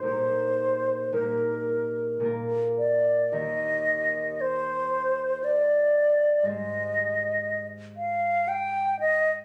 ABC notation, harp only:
X:1
M:3/4
L:1/8
Q:1/4=58
K:Eb
V:1 name="Harp"
[B,,B,EG]2 [B,,B,EG]2 [B,,B,FB]2 | [E,,B,GB]6 | [A,,A,Gc]6 |]